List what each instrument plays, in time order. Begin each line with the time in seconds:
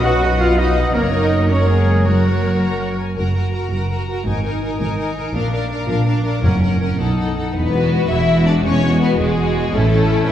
Already playing: double bass section B1, trombone section F#2 F#3, french horn section B4 D#5
0.03 cello section F#4, viola section B4, violin section F#5, oboe F#5, trumpet F#5
0.21 viola section F#4, violin section D#5 B5
0.40 cello section F4, viola section B4, oboe F5, trumpet F5, violin section F#5
0.58 cello section D#4, viola section F#4, oboe D#5, trumpet D#5, violin section D#5 B5
0.76 viola section B4, violin section F#5
0.93 double bass section F#1, trombone section F#2 F#3, cello section A#3, oboe A#4, viola section A#4, trumpet A#4, french horn section A#4 C#5, violin section C#5 F#5
1.12 cello section D#4, oboe D#5, trumpet D#5
1.49 cello section C#4, viola section A#4, violin section C#5 F#5, oboe C#5, trumpet C#5
1.68 cello section G#3, oboe G#4, trumpet G#4
2.05 cello section F#3, oboe F#4, trumpet F#4, viola section A#4, violin section C#5 F#5
2.63 violin section A#5
2.81 violin section F#5
3.00 violin section G#5
3.16 double bass section F#1, cello section F#2, viola section F#4, violin section A#4 A#5
3.35 viola section F#4, violin section A#4 A#5
3.53 viola section F#4, violin section A#4 A#5
3.71 double bass section F#1, cello section F#2, viola section F#4, violin section A#4 A#5
3.90 viola section F#4, violin section A#4 A#5
4.09 viola section F#4, violin section A#4 A#5
4.26 double bass section G#1, cello section G#2, viola section D#4, violin section A#4 G#5
4.44 viola section D#4, violin section A#4 G#5
4.62 viola section D#4, violin section A#4 G#5
4.80 double bass section G#1, cello section G#2, viola section D#4, violin section A#4 G#5
4.98 viola section D#4, violin section A#4 G#5
5.16 viola section D#4, violin section A#4 G#5
5.34 double bass section A#1, cello section A#2, viola section D4, violin section A#4 F5
5.52 viola section D4, violin section A#4 F5
5.71 viola section D4, violin section A#4 F5
5.88 double bass section A#1, cello section A#2, viola section D4, violin section A#4 F5
6.06 viola section D4, violin section A#4 F5
6.24 viola section D4, violin section A#4 F5
6.43 double bass section F#1, cello section F#2, timpani F#2, viola section C#4, violin section A#4 F#5
6.62 viola section C#4, violin section A#4 F#5
6.81 viola section C#4, violin section A#4 F#5
6.98 double bass section B1, cello section B2, viola section D#4, violin section A4 F#5
7.18 viola section D#4, violin section A4 F#5
7.36 viola section D#4, violin section A4 F#5
7.54 double bass section E1, cello section E2, violin section B3 B4
7.74 viola section G#3 F#4
8.09 double bass section E1, cello section E2, violin section E4 E5
8.28 viola section G#3 F#4
8.46 violin section D4 D5
8.64 double bass section E1, cello section E2, violin section C#4 C#5
8.83 viola section G#3 F#4
9.00 violin section B3 B4
9.18 double bass section E1, cello section E2, violin section G#3 G#4
9.37 viola section G#3 F#4
9.72 double bass section A1, cello section A2, violin section A3 A4, viola section C#4 E4
9.91 viola section C#4 E4
10.26 double bass section A1, cello section A2, violin section E4 E5